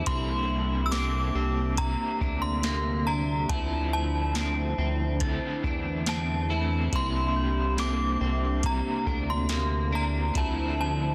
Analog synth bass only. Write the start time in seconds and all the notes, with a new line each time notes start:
0.07 C2
1.35 C2
2.21 D2
3.49 D2
4.78 D2
5.64 E2
6.93 C2
8.21 C2
9.06 D2
10.35 D2